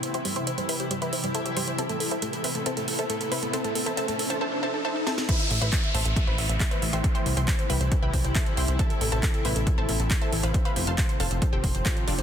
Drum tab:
CC |----------------|----------------|----------------|x---------------|
HH |xxoxxxoxxxoxxxox|xxoxxxoxxxoxxxox|xxoxxxox--------|xxoxxxoxx-oxxxox|
CP |----------------|----------------|----------------|----x-------x---|
SD |----------------|----------------|--------------oo|----------------|
BD |----------------|----------------|----------------|o---o---o---o---|

CC |----------------|----------------|----------------|
HH |xxoxxxoxx-oxxxox|xxoxxxoxx-oxxxox|xxoxxxoxx-oxxxox|
CP |----x-------x---|----x-------x---|----x-------x---|
SD |----------------|----------------|----------------|
BD |o---o---o-o-o---|o---o---o---o---|o---o---o-o-o---|